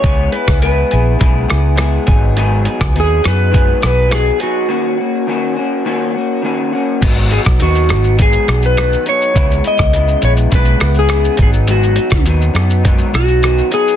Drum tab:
CC |----------------|----------------|----------------|x---------------|
HH |x-x-x-x-x-x-x-x-|x-x-x-x-x-x-x-x-|----------------|x-x-x-x-x-x-x-x-|
SH |----------------|----------------|----------------|xxxxxxxxxxxxxxxx|
SD |---r------r-r---|---r--r---r-r---|----------------|---r--r---r-r---|
BD |o--o----o-----o-|---o----o-------|----------------|o--o----o-------|

CC |----------------|----------------|
HH |x-x-x-x-x-x-x-x-|x-x-x-x-x-x-x-x-|
SH |xxxxxxxxxxxxxxxx|xxxxxxxxxxxxxxxx|
SD |---r------r-r---|---r--r---r-r---|
BD |o--o----o-----o-|---o----o-------|